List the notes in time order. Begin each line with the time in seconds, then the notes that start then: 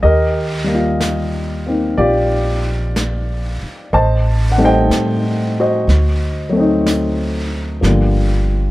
0.02 D#2 G4 A#4 D#5, brush sweep
0.64 G3 A#3
0.75 F4
1.00 brush sweep, snare, hi-hat pedal
1.66 A#3 C4 D#4
1.98 A#1 F4 G4 D5, brush sweep
2.96 brush sweep, snare, hi-hat pedal
3.63 muted upright bass stroke
3.93 A1 C5 D#5 A5, brush sweep
4.52 F#5
4.58 G3 A3 C4 D#4
4.64 C5 D#5 G5
4.89 A2, brush sweep, snare, hi-hat pedal
5.60 F#4 C5 D#5
5.87 D2, brush sweep, snare
6.49 F#3 A3
6.57 C4 D#4
6.86 brush sweep, snare, hi-hat pedal
7.81 G1 F3 G3 A#3, brush sweep, snare
7.86 D3